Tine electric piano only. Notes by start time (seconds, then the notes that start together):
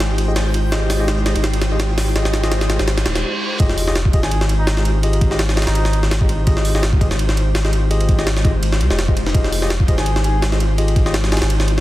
0.28 F4 G4 G#4 D#5
0.72 F4 G4 G#4 D#5
1.00 F4 G4 G#4 D#5
1.26 F4 G4 G#4 D#5
1.72 F4 G4 G#4 D#5
2.16 F4 G4 G#4 D#5
2.43 F4 G4 G#4 D#5
2.70 F4 G4 G#4 D#5
3.60 F4 G4 G#4 D#5
3.88 F4 G4 G#4 D#5
4.14 F4 G4 G#4 D#5
4.77 F4 G4 G#4 D#5
5.04 F4 G4 G#4 D#5
5.31 F4 G4 G#4 D#5
5.57 F4 G4 G#4 D#5
6.21 F4 G4 G#4 D#5
6.47 F4 G4 G#4 D#5
6.75 F4 G4 G#4 D#5
7.01 F4 G4 G#4 D#5
7.65 F4 G4 G#4 D#5
7.91 F4 G4 G#4 D#5
8.18 F4 G4 G#4 D#5
8.45 F4 G4 G#4 D#5
8.90 F4 G4 G#4 D#5
9.08 F4 G4 G#4 D#5
9.34 F4 G4 G#4 D#5
9.62 F4 G4 G#4 D#5
9.89 F4 G4 G#4 D#5
10.52 F4 G4 G#4 D#5
10.78 F4 G4 G#4 D#5
11.06 F4 G4 G#4 D#5
11.32 F4 G4 G#4 D#5